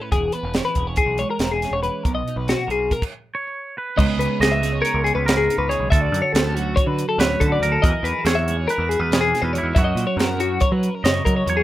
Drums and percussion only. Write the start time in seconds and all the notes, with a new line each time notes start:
0.12 kick, closed hi-hat
0.32 closed hi-hat
0.54 snare, closed hi-hat
0.75 kick, closed hi-hat
0.96 kick, closed hi-hat
1.18 closed hi-hat
1.39 snare, closed hi-hat
1.62 snare, closed hi-hat
1.83 closed hi-hat
2.05 kick, closed hi-hat
2.28 closed hi-hat
2.48 snare, closed hi-hat
2.70 closed hi-hat
2.91 kick, closed hi-hat
3.02 kick, crash
3.99 kick, crash
4.21 closed hi-hat
4.42 snare, closed hi-hat
4.63 snare, closed hi-hat
4.85 closed hi-hat
5.06 closed hi-hat
5.28 snare, closed hi-hat
5.50 closed hi-hat
5.71 closed hi-hat
5.92 kick, closed hi-hat
6.14 closed hi-hat
6.35 snare, closed hi-hat
6.57 closed hi-hat
6.77 kick, closed hi-hat
6.99 closed hi-hat
7.20 snare, closed hi-hat
7.41 kick, closed hi-hat
7.63 closed hi-hat
7.84 kick, closed hi-hat
8.05 closed hi-hat
8.26 snare, closed hi-hat
8.48 closed hi-hat
8.69 closed hi-hat
8.91 closed hi-hat
9.12 snare, closed hi-hat
9.35 snare, closed hi-hat
9.55 closed hi-hat
9.76 kick, closed hi-hat
9.97 closed hi-hat
10.19 snare, closed hi-hat
10.40 closed hi-hat
10.60 kick, closed hi-hat
10.83 closed hi-hat
11.05 snare, closed hi-hat
11.26 kick, closed hi-hat
11.48 closed hi-hat